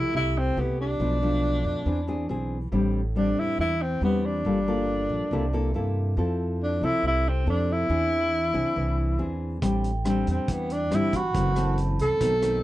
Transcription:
Already playing: F3 A3 E4 G4
0.13 C2 C3 E4
0.38 C4
0.56 C2 A3 B3 E4 G4
0.81 D4
1.00 B1 B2 F3 A3 D4
1.23 F3 A3 D4
1.65 F2
1.86 E2 E3 C4 D4 G#4
2.08 C4 D4 G#4
2.29 B1 C4 D4 G#4
2.72 A1 A2 G3 C4 D4
3.16 G3 C4 D4
3.39 E4
3.58 E2 E3 E4
3.82 C4
4.01 E2 G3 B3 C4 D4
4.25 D4
4.45 G1 G3 A#3 F4 A4
4.68 A#3 F4 A4
5.09 A#1
5.31 C2 C3 A#3 E4 A4
5.53 A#3 E4 A4
5.74 G2 A#3 E4 A4
6.17 F2 F3 C4 E4 A4
6.63 D4
6.81 C2 C4 E4 A4
7.03 C2 C3
7.07 E4
7.29 C4
7.47 F2 C4 D4 E4 A4
7.72 E4
7.89 E2 E3 C4 D4 G#4
8.54 C2 C4 D4 G#4
8.76 C2 E3
9.19 E2 C4 D4 G#4
9.62 A1 A2 G3 C4 D4 G5, kick, cross-stick, closed hi-hat
9.84 closed hi-hat
10.04 G3 C4 D4, cross-stick, closed hi-hat
10.27 E2 C4, closed hi-hat
10.48 E2 E3, kick, closed hi-hat
10.52 B3
10.70 D4, closed hi-hat
10.91 G1 G3 C4 D4, cross-stick, closed hi-hat
10.95 E4
11.12 F#4 B5, kick, closed hi-hat
11.34 F#1 F#2 E3 A3 C4, kick, closed hi-hat
11.55 E3 A3 C4 A5, cross-stick, closed hi-hat
11.78 closed hi-hat
11.99 C2 A4, closed hi-hat
12.20 B1 B2 D#3 A3 C4, kick, closed hi-hat
12.42 D#3 A3 C4, cross-stick, closed hi-hat

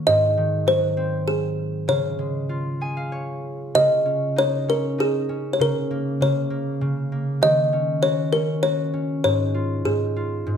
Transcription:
Already playing: D#3 A#3 F#4
0.07 G#2 D#5
0.37 D#3
0.67 F#3 C5
0.97 C4
1.28 G#4
1.88 C#3 C#5
2.19 G#3
2.49 F4
2.81 G#4 G#5
2.97 F5
3.12 C#5
3.75 C#3 D#5
4.05 C#4
4.36 D#4 C#5
4.68 C#4 A#4
4.98 D#4 G#4
5.29 C#4
5.53 C#5
5.59 C#3 A#4
5.91 A#3
6.21 C#3 C#5
6.50 A#3
6.81 C#3
7.12 A#3
7.41 D#3 D#5
7.73 C#4
8.02 F#4 C#5
8.33 C#4 A#4
8.63 F#4 C#5
8.94 C#4
9.24 G#2 C#5
9.54 F4
9.85 G#2 G#4
10.16 F4
10.47 G#2

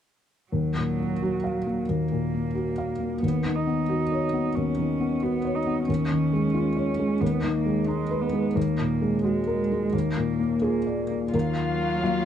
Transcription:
0.52 D#2 F#3
0.77 A#2
1.00 A#3
1.22 F#4
1.44 F5
1.67 A#3
1.88 D#2 A#3
2.12 A#2
2.34 A#3
2.55 F#4
2.78 F5
3.00 A#3
3.22 D#2 B3
3.46 D#3
3.55 D#4
3.67 B3
3.89 F#4
4.12 C#5
4.33 B3
4.55 D#2 C#4
4.78 D#3
5.00 B3
5.23 B3 F#4
5.44 C#5
5.55 D#4
5.66 B3
5.88 D#2 C#4
6.11 D#3
6.33 G#3
6.54 F4
6.77 C#5
6.99 G#3
7.21 D#2 B3
7.44 D#3
7.55 A#3
7.66 G#3
7.88 G#3 D#4
8.11 B4
8.22 B3
8.33 G#3
8.55 D#2 A#3
8.79 A#2
9.02 G#3
9.24 G#3 F#4
9.47 A#4
9.72 G#3
9.93 D#2 A#3
10.17 A#2
10.40 A#3
10.62 A#3 F4 G#4
10.86 D5
11.11 A#3
11.33 D#2 F#3 A#3 F4 A#4 F5
12.03 F#3 A#3 F5

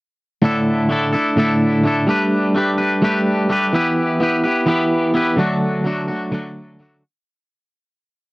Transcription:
0.42 A2 D3 A3 D4 E4 A4
0.89 A3 D4 E4 A4
1.13 A3 D4 E4 A4
1.36 A2 D3 A3 D4 E4 A4
1.84 A3 D4 E4 A4
2.07 G3 A3 D4 G4 B4
2.55 A3 D4 G4 B4
2.78 D4 G4 B4
3.02 G3 A3 D4 G4 B4
3.49 A3 D4 G4 B4
3.73 E3 B3 E4 G4 B4
4.20 B3 E4 G4 B4
4.44 E4 G4 B4
4.66 E3 B3 E4 G4 B4
5.14 B3 E4 G4 B4
5.36 D3 F#3 A3 D4 F#4
5.84 F#3 A3 D4 F#4
6.08 A3 D4 F#4
6.32 D3 F#3 A3 D4 F#4
6.79 F#3 A3 D4 F#4

